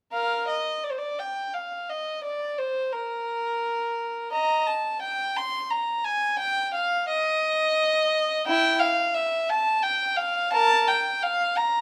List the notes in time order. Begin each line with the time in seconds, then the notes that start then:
0.13 A#4 F5
0.48 D#5
0.84 D5
0.91 C5
0.98 D5
1.19 G5
1.54 F5
1.89 D#5
2.24 D5
2.58 C5
2.93 A#4
4.32 D#5 A#5
4.67 A5
5.02 G5
5.36 C6
5.70 A#5
6.04 G#5
6.39 G5
6.74 F5
7.08 D#5
8.47 E4 G5
8.80 F5
9.14 E5
9.49 A5
9.83 G5
10.16 F5
10.53 A#4 A5
10.88 G5
11.22 F5
11.57 A#5